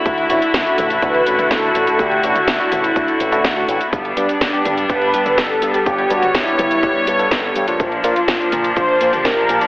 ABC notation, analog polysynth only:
X:1
M:4/4
L:1/8
Q:1/4=124
K:D
V:1 name="Analog polysynth"
z E z2 B2 A2 | G F E4 z2 | z D D2 B2 A2 | G F E4 z2 |
z =F F2 =c2 _B2 |]